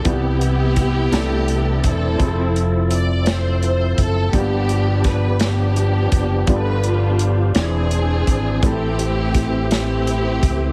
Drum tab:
HH |xxxxxx|xxxxxx|xxxxxx|xxxxxx|
SD |--oo--|---o--|--oo--|---o--|
BD |o-o--o|o----o|o-o--o|o----o|

HH |xxxxxx|
SD |--oo--|
BD |o-o--o|